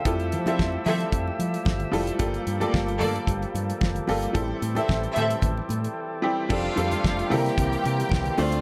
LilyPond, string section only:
\new Staff \with { instrumentName = "String section" } { \time 4/4 \key f \major \tempo 4 = 112 r8. <c' a' e''>16 r8 <c' a' e''>8 r2 | r8. <bes a' d''>16 r8 <bes a' d''>8 r2 | r8. <c' a' e''>16 r8 <c' a' e''>8 r2 | <f' f''>4. <g' g''>2 <f' f''>8 | }